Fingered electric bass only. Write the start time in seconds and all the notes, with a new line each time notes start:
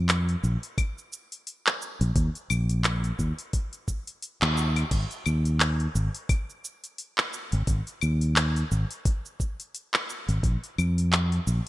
Already playing: F2
0.43 A#1
2.01 A#1
2.15 D#2
2.50 A#1
3.19 D#2
4.42 D#2
4.91 G#1
5.26 D#2
5.95 G#1
7.53 G#1
7.67 G#1
8.03 D#2
8.71 G#1
10.29 G#1
10.43 A#1
10.78 F2
11.47 A#1